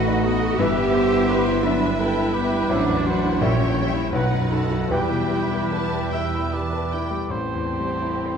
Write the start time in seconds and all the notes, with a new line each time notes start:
Already playing: A1 A2 A3 B3 D#4 F#4 A4 B4 D#5 F#5 B5
0.08 D#4
0.23 B3 D#5
0.40 A3
0.58 G1 G2 E3 B3 G4 B4 E5
0.76 G3
0.93 B3 C5
1.13 E4
1.29 B4 C5
1.48 E4
1.63 F#3 D4 B4 E5
1.83 B5
1.97 G3 E4 A4 B4 G5
2.18 E4
2.34 B3 G4 G5
2.52 G3
2.68 A1 F#3 D4 C5 D5 E5 F#5
2.89 E2
3.06 F#3 C5 F#5
3.23 E4
3.40 A#1 E3 G3 C#4 A#4 C#5 E5 G5
3.59 A#2
3.77 G3 E5
3.94 E4
4.12 B1 F#3 D#4 B4 F#5
4.17 F#5
4.32 F#2
4.51 F#3 A4 F#5
4.70 F#4
4.88 E2 E3 G4 B4 G5
4.92 G3 E4 E5 G5
5.09 B2
5.31 G3
5.51 E4
5.70 B4 A5
5.92 G4
6.12 E5 G5
6.34 B5
6.52 G4 D5 A5
6.73 B4
6.92 E4 G5
7.11 G3
7.29 A1 A2 C4 G4 A4 C5
7.54 E2
7.79 G3
8.02 E4
8.26 C5